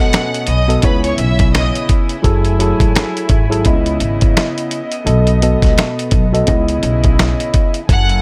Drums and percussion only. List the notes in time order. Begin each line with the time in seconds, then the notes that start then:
0.13 snare, closed hi-hat
0.34 closed hi-hat
0.47 closed hi-hat
0.70 closed hi-hat
0.82 kick, closed hi-hat
1.04 closed hi-hat
1.18 closed hi-hat
1.39 kick, closed hi-hat
1.55 snare, closed hi-hat
1.75 closed hi-hat
1.89 kick, closed hi-hat
2.09 closed hi-hat
2.24 kick, closed hi-hat
2.45 closed hi-hat
2.60 closed hi-hat
2.80 kick, closed hi-hat
2.96 snare, closed hi-hat
3.17 closed hi-hat
3.29 kick, closed hi-hat
3.52 closed hi-hat
3.65 kick, closed hi-hat
3.86 closed hi-hat
4.00 closed hi-hat
4.21 kick, closed hi-hat
4.37 snare, closed hi-hat
4.58 closed hi-hat
4.71 closed hi-hat
4.92 closed hi-hat
5.07 closed hi-hat
5.27 closed hi-hat
5.42 closed hi-hat
5.62 kick, snare, closed hi-hat
5.78 snare, closed hi-hat
5.99 closed hi-hat
6.11 kick, closed hi-hat
6.35 closed hi-hat
6.47 kick, closed hi-hat
6.68 closed hi-hat
6.83 closed hi-hat
7.04 kick, closed hi-hat
7.19 snare, closed hi-hat
7.40 closed hi-hat
7.54 kick, closed hi-hat
7.74 closed hi-hat
7.89 kick, closed hi-hat
8.09 closed hi-hat